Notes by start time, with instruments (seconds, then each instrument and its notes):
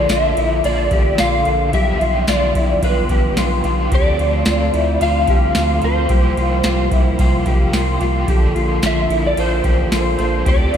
Already playing: overdriven electric guitar D3 D4 A4, tonewheel organ D3 F3 A#3 F4 A4, electric slide guitar D5
0.09 sub bass A#1, overdriven electric guitar F3 A#3 D4 A4, clean electric guitar F4, electric slide guitar E5, snare, ride, tambourine
0.37 sub bass A#1, clean electric guitar E4, ride
0.63 sub bass A#1, overdriven electric guitar A#2 D3 F3 A#3, clean electric guitar F4, electric slide guitar D5, ride
0.67 overdriven electric guitar D4 A4
0.91 sub bass A1, clean electric guitar G4, kick, ride
1.18 sub bass A#1, clean electric guitar F4, electric slide guitar F5, snare, ride, tambourine
1.45 sub bass A#1, clean electric guitar F4, ride
1.73 sub bass B1, overdriven electric guitar B2 F3 B3 D4 F4 G4, tonewheel organ G3 B3, clean electric guitar G4, electric slide guitar E5, kick, ride
2.01 sub bass B1, clean electric guitar F4, ride
2.27 sub bass B1, overdriven electric guitar B3 D4 F4 G4, clean electric guitar F4, electric slide guitar D5, snare, ride, tambourine
2.55 sub bass B1, clean electric guitar E4, kick, ride
2.82 sub bass B1, overdriven electric guitar B2 F3 B3 D4 F4 G4, clean electric guitar F4, electric slide guitar B4, kick, ride
3.09 sub bass A1, clean electric guitar G4, kick, ride
3.37 sub bass B1, clean electric guitar F4, snare, ride, tambourine
3.64 sub bass B1, overdriven electric guitar B3 D4 F4 G4, clean electric guitar F4, ride
3.91 sub bass D2, overdriven electric guitar D3 A3 C4 F4 A4, tonewheel organ F3 A3 C4, clean electric guitar G4, electric slide guitar D5, kick, ride
4.19 sub bass D2, clean electric guitar F4, ride
4.45 sub bass D2, overdriven electric guitar A3 C4 F4 A4, clean electric guitar F4, snare, ride, tambourine
4.74 sub bass D2, clean electric guitar E4, ride
5.00 sub bass D2, overdriven electric guitar D3 A3 C4 F4 A4, clean electric guitar F4, electric slide guitar F5, ride
5.28 sub bass C2, clean electric guitar G4, kick, ride
5.55 sub bass D2, clean electric guitar F4, snare, ride, tambourine
5.81 sub bass D2, overdriven electric guitar C4 F4 A4, clean electric guitar F4, electric slide guitar C5, ride
6.09 sub bass C2, overdriven electric guitar C3 G3 A#3 F4 G4, tonewheel organ C3 G3 A#3 F4, clean electric guitar G4, kick, ride
6.37 sub bass C2, clean electric guitar F4, ride
6.64 sub bass C2, overdriven electric guitar G3 A#3 F4 G4, clean electric guitar F4, snare, ride, tambourine
6.92 sub bass C2, clean electric guitar E4, kick, ride
7.18 sub bass C2, overdriven electric guitar C3 G3 A#3 F4 G4, clean electric guitar F4, kick, ride
7.46 sub bass A#1, clean electric guitar G4, kick, ride
7.73 sub bass C2, clean electric guitar F4, snare, ride, tambourine
8.00 sub bass C2, overdriven electric guitar A#3 F4 G4, clean electric guitar F4, ride
8.27 sub bass A#1, overdriven electric guitar A#2 D3 F3 A#3 D4 A4, tonewheel organ D3 A#3 F4 A4, clean electric guitar G4, kick, ride
8.55 sub bass A#1, clean electric guitar F4, ride
8.82 sub bass A#1, overdriven electric guitar F3 A#3 D4 A4, clean electric guitar F4, snare, ride, tambourine
8.86 electric slide guitar E5
9.10 sub bass A#1, clean electric guitar E4, ride
9.26 electric slide guitar D5
9.37 sub bass A#1, overdriven electric guitar A#2 D3 F3 A#3 D4 A4, clean electric guitar F4, electric slide guitar C5, ride
9.64 sub bass A1, clean electric guitar G4, kick, ride
9.92 sub bass A#1, clean electric guitar F4, snare, ride, tambourine
10.19 sub bass A#1, overdriven electric guitar F3 A#3 D4 A4, clean electric guitar F4, ride
10.45 sub bass D2, overdriven electric guitar D3 F3 C4, tonewheel organ D3 F3 C4, clean electric guitar G4, electric slide guitar D5, kick, ride
10.49 overdriven electric guitar D4 A4
10.73 sub bass D2, clean electric guitar F4, ride